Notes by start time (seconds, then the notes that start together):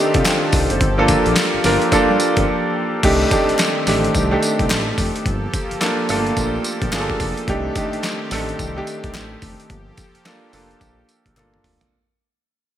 Already playing: D#3 C4 D4 G4 A4
0.00 A3 D#4
0.14 C2 C4 F4, kick, closed hi-hat
0.25 D4 G4, snare, clap, closed hi-hat, tambourine
0.43 D#4 A4
0.52 C2, kick, open hi-hat, tambourine
0.70 F#1 G4 C5, closed hi-hat
0.81 G1 F3 A#3 G4, kick, closed hi-hat
0.98 A#3 D4 F4 A4
1.08 kick, closed hi-hat, tambourine
1.26 A#1, closed hi-hat
1.36 snare, clap, closed hi-hat, tambourine
1.54 G1
1.64 G1 A#3 D4 F4 A#4, snare, open hi-hat, tambourine
1.82 closed hi-hat
1.91 G2 A#3 D4 F4 A4, kick, closed hi-hat, tambourine
2.10 G2
2.20 closed hi-hat, tambourine
2.37 G1, kick, closed hi-hat
3.03 C2 D#3 A3 C4 D4 D#4 G4 A4, kick, closed hi-hat, crash
3.31 A3 D4 D#4 G4, kick, closed hi-hat, tambourine
3.49 A1, closed hi-hat
3.59 snare, clap, closed hi-hat, tambourine
3.87 A1 A3 D4 D#4 G4, snare, open hi-hat, tambourine
4.04 closed hi-hat
4.15 C2, kick, closed hi-hat, tambourine
4.31 A3 D4 D#4 G4
4.43 closed hi-hat, tambourine
4.59 C2, kick, closed hi-hat
4.70 A1, snare, clap, closed hi-hat, tambourine
4.98 F1, kick, open hi-hat, tambourine
5.16 closed hi-hat
5.26 G1 F3 A#3 G4, kick, closed hi-hat
5.53 kick, closed hi-hat, tambourine
5.71 G1, closed hi-hat
5.81 A#3 D4 F4 A4, snare, clap, closed hi-hat, tambourine
6.09 G1 A3 D4 F4 A4, open hi-hat, tambourine
6.16 A#3
6.27 closed hi-hat
6.37 A#1, kick, closed hi-hat, tambourine
6.64 closed hi-hat, tambourine
6.82 A#1, kick, closed hi-hat
6.92 G1 A#3 D4 F4 G#4, snare, clap, closed hi-hat, tambourine
7.00 A4
7.10 kick
7.20 F1, kick, open hi-hat, tambourine
7.37 closed hi-hat
7.48 C2 D#3 A3 C4 D4 D#4 G4, kick, closed hi-hat
7.75 A3 D4 D#4 G4, kick, closed hi-hat, tambourine
7.93 A1, closed hi-hat
8.03 snare, clap, closed hi-hat, tambourine
8.31 A1 A3 D4 D#4 A4, snare, open hi-hat, tambourine
8.49 closed hi-hat
8.59 C2, kick, closed hi-hat, tambourine
8.77 A3 D4 D#4 G4
8.87 closed hi-hat, tambourine
9.04 C2, kick, closed hi-hat
9.14 A1, snare, clap, closed hi-hat, tambourine
9.42 F1, kick, open hi-hat, tambourine
9.60 closed hi-hat
9.69 G1 F3 A#3 G4 A4, kick, closed hi-hat
9.97 kick, closed hi-hat, tambourine
10.15 F1, closed hi-hat
10.26 A#3 D4 F4 A4, snare, clap, closed hi-hat, tambourine
10.53 F1 A#3 D4 F4 A4, open hi-hat, tambourine
10.71 closed hi-hat
10.81 A#1, kick, closed hi-hat, tambourine
11.09 closed hi-hat, tambourine
11.26 A#1, kick, closed hi-hat
11.36 G1 A#3 D4 F4 A4, clap, closed hi-hat, high tom
11.54 mid tom
11.64 F1, mid tom, open hi-hat
11.81 closed hi-hat, floor tom